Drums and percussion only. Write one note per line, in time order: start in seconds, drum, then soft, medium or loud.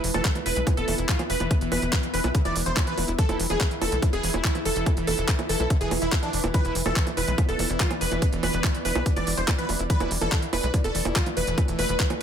0.04 open hi-hat loud
0.14 closed hi-hat medium
0.14 high bongo medium
0.25 kick loud
0.25 clap loud
0.25 closed hi-hat loud
0.35 closed hi-hat medium
0.35 high bongo soft
0.46 open hi-hat medium
0.56 closed hi-hat medium
0.67 kick loud
0.67 closed hi-hat loud
0.67 high bongo medium
0.77 closed hi-hat medium
0.88 open hi-hat loud
0.88 high bongo soft
0.98 closed hi-hat medium
1.09 kick loud
1.09 clap loud
1.09 closed hi-hat loud
1.19 closed hi-hat medium
1.19 high bongo medium
1.30 open hi-hat medium
1.40 closed hi-hat medium
1.40 high bongo soft
1.51 kick loud
1.51 closed hi-hat loud
1.61 closed hi-hat medium
1.72 open hi-hat loud
1.72 high bongo medium
1.82 closed hi-hat medium
1.93 kick loud
1.93 clap loud
1.93 closed hi-hat medium
1.93 high bongo soft
2.03 closed hi-hat medium
2.14 open hi-hat loud
2.24 closed hi-hat medium
2.24 high bongo medium
2.35 kick loud
2.35 closed hi-hat loud
2.45 closed hi-hat medium
2.45 high bongo soft
2.56 open hi-hat loud
2.66 closed hi-hat medium
2.77 kick loud
2.77 clap loud
2.77 closed hi-hat loud
2.77 high bongo medium
2.87 closed hi-hat medium
2.98 open hi-hat loud
2.98 high bongo soft
3.08 closed hi-hat medium
3.19 kick loud
3.19 closed hi-hat medium
3.29 closed hi-hat medium
3.29 high bongo medium
3.40 open hi-hat loud
3.50 closed hi-hat medium
3.50 high bongo soft
3.61 kick loud
3.61 clap loud
3.61 closed hi-hat medium
3.71 closed hi-hat medium
3.82 open hi-hat loud
3.82 high bongo medium
3.92 closed hi-hat medium
4.02 kick loud
4.02 closed hi-hat medium
4.02 high bongo soft
4.13 closed hi-hat medium
4.23 open hi-hat loud
4.34 high bongo medium
4.44 kick loud
4.44 clap loud
4.44 closed hi-hat medium
4.55 closed hi-hat medium
4.55 high bongo soft
4.65 open hi-hat loud
4.76 closed hi-hat medium
4.86 kick loud
4.86 closed hi-hat medium
4.86 high bongo medium
4.97 closed hi-hat medium
5.07 open hi-hat loud
5.07 high bongo soft
5.18 closed hi-hat medium
5.28 kick loud
5.28 clap loud
5.28 closed hi-hat medium
5.39 closed hi-hat medium
5.39 high bongo medium
5.49 open hi-hat loud
5.60 closed hi-hat medium
5.60 high bongo soft
5.70 kick loud
5.70 closed hi-hat medium
5.81 closed hi-hat medium
5.91 open hi-hat loud
5.91 high bongo medium
6.02 closed hi-hat medium
6.12 kick loud
6.12 clap loud
6.12 closed hi-hat medium
6.12 high bongo soft
6.23 closed hi-hat medium
6.33 open hi-hat loud
6.44 closed hi-hat medium
6.44 high bongo medium
6.54 kick loud
6.54 closed hi-hat medium
6.54 high bongo soft
6.65 closed hi-hat medium
6.75 open hi-hat loud
6.86 closed hi-hat medium
6.86 high bongo medium
6.96 kick loud
6.96 clap loud
6.96 closed hi-hat medium
7.07 closed hi-hat medium
7.07 high bongo soft
7.17 open hi-hat medium
7.28 closed hi-hat medium
7.38 kick loud
7.38 closed hi-hat medium
7.38 high bongo medium
7.49 closed hi-hat soft
7.59 open hi-hat loud
7.59 high bongo soft
7.70 closed hi-hat medium
7.80 kick loud
7.80 clap loud
7.80 closed hi-hat medium
7.91 closed hi-hat medium
7.91 high bongo medium
8.01 open hi-hat medium
8.12 closed hi-hat medium
8.12 high bongo soft
8.22 kick loud
8.22 closed hi-hat medium
8.33 closed hi-hat medium
8.43 open hi-hat loud
8.43 high bongo medium
8.54 closed hi-hat medium
8.64 kick loud
8.64 clap loud
8.64 closed hi-hat medium
8.64 high bongo soft
8.74 closed hi-hat medium
8.85 open hi-hat medium
8.95 closed hi-hat medium
8.95 high bongo medium
9.06 kick loud
9.06 closed hi-hat medium
9.16 closed hi-hat medium
9.16 high bongo soft
9.27 open hi-hat loud
9.37 closed hi-hat medium
9.48 kick loud
9.48 clap loud
9.48 closed hi-hat medium
9.48 high bongo medium
9.58 closed hi-hat medium
9.69 open hi-hat medium
9.69 high bongo soft
9.79 closed hi-hat medium
9.90 kick loud
9.90 closed hi-hat medium
10.00 closed hi-hat medium
10.00 high bongo medium
10.11 open hi-hat loud
10.21 closed hi-hat medium
10.21 high bongo soft
10.32 kick loud
10.32 clap loud
10.32 closed hi-hat loud
10.42 closed hi-hat medium
10.53 open hi-hat medium
10.53 high bongo medium
10.63 closed hi-hat medium
10.74 kick loud
10.74 closed hi-hat medium
10.74 high bongo soft
10.84 closed hi-hat medium
10.95 open hi-hat loud
11.05 closed hi-hat medium
11.05 high bongo medium
11.16 kick loud
11.16 clap loud
11.16 closed hi-hat loud
11.26 closed hi-hat medium
11.26 high bongo soft
11.37 open hi-hat medium
11.47 closed hi-hat medium
11.58 kick loud
11.58 closed hi-hat loud
11.58 high bongo medium
11.68 closed hi-hat medium
11.79 open hi-hat loud
11.79 high bongo soft
11.89 closed hi-hat medium
12.00 kick loud
12.00 clap loud
12.00 closed hi-hat loud
12.10 closed hi-hat medium
12.10 high bongo medium